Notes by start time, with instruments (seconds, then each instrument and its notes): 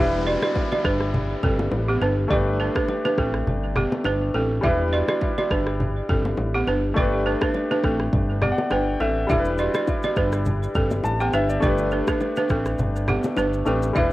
Already playing: analog synth bass E1, grand piano G3 D4, downlifter
0.00 grand piano E4 B4
0.27 balafon F#4 D5
0.42 balafon F#4 D5, cross-stick, low bongo
0.55 kick, high bongo
0.72 balafon F#4 D5, low bongo
0.85 analog synth bass G1, balafon D4 B4, kick, cross-stick
1.01 cross-stick
1.14 low conga
1.43 analog synth bass G1, balafon C4 A4, kick, low conga
1.59 low bongo
1.72 analog synth bass A1, high bongo
1.88 balafon B3 G4
2.01 analog synth bass G1, balafon D4 B4, high bongo
2.28 analog synth bass G1, grand piano A3 D4 G4, balafon G4 D5, kick, low conga
2.33 grand piano B4
2.60 balafon D4 B4
2.75 balafon D4 B4, kick, cross-stick, low bongo
2.88 high bongo
3.05 balafon D4 B4, low bongo
3.18 analog synth bass A1, balafon C4 A4, kick, cross-stick
3.34 cross-stick
3.47 analog synth bass G1, low conga
3.76 balafon B3 G4, cross-stick, low conga
3.92 low bongo
4.04 analog synth bass G1, balafon D4 B4, high bongo
4.34 analog synth bass A1, balafon C4 A4, high bongo
4.61 analog synth bass E1, grand piano G3 D4 E4, balafon G4 E5, kick, low conga
4.66 grand piano B4
4.93 balafon F#4 D5
5.08 balafon F#4 D5, cross-stick, low bongo
5.21 kick, high bongo
5.38 balafon F#4 D5, low bongo
5.51 analog synth bass G1, balafon D4 B4, kick, cross-stick
5.67 cross-stick
5.80 low conga
6.09 analog synth bass G1, balafon C4 A4, kick, low conga
6.25 low bongo
6.37 analog synth bass A1, high bongo
6.55 balafon B3 G4
6.67 analog synth bass G1, balafon D4 B4, high bongo
6.94 analog synth bass G1, grand piano A3 D4 G4, balafon G4 D5, kick, low conga
6.99 grand piano B4
7.26 balafon D4 B4
7.41 balafon D4 B4, kick, cross-stick, low bongo
7.54 high bongo
7.71 balafon D4 B4, low bongo
7.84 analog synth bass A1, balafon C4 A4, kick, cross-stick
8.00 cross-stick
8.13 analog synth bass G1, kick, low conga
8.42 balafon B3 G4, grand piano D5, cross-stick, low conga
8.52 grand piano F#5
8.58 low bongo
8.70 analog synth bass G1, balafon D4 B4, grand piano G5, cross-stick, high bongo
9.00 analog synth bass A1, balafon C4 A4, grand piano E5, high bongo
9.27 analog synth bass E1, grand piano G3 D4 E4, balafon G4 E5, kick, low conga, shaker
9.32 grand piano A4
9.38 grand piano B4
9.45 shaker
9.58 balafon F#4 D5, shaker
9.74 balafon F#4 D5, cross-stick, low bongo, shaker
9.87 kick, high bongo, shaker
10.03 balafon F#4 D5, low bongo, shaker
10.16 analog synth bass G1, balafon D4 B4, kick, cross-stick, shaker
10.33 cross-stick, shaker
10.46 low conga, shaker
10.63 shaker
10.75 analog synth bass G1, balafon C4 A4, kick, low conga, shaker
10.91 low bongo, shaker
11.04 analog synth bass A1, grand piano A5, high bongo, shaker
11.20 balafon B3 G4, grand piano G5, shaker
11.33 analog synth bass G1, balafon D4 B4, grand piano E5, high bongo, shaker
11.49 grand piano D5, shaker
11.60 analog synth bass G1, grand piano A3 D4 G4, balafon G4 D5, kick, low conga, shaker
11.65 grand piano B4
11.78 shaker
11.91 balafon D4 B4, shaker
12.07 balafon D4 B4, kick, cross-stick, low bongo, shaker
12.20 high bongo, shaker
12.36 balafon D4 B4, low bongo, shaker
12.49 analog synth bass A1, balafon C4 A4, kick, cross-stick, shaker
12.65 cross-stick, shaker
12.78 analog synth bass G1, low conga, shaker
12.96 shaker
13.08 balafon B3 G4, cross-stick, low conga, shaker
13.23 low bongo, shaker
13.36 analog synth bass G1, balafon D4 B4, high bongo, shaker
13.53 shaker
13.65 analog synth bass A1, grand piano A3 D4 G4 B4, balafon C4 A4, high bongo, shaker
13.83 shaker
13.93 analog synth bass E1, grand piano G3 D4 E4, balafon G4 E5, kick, low conga, shaker
13.98 grand piano B4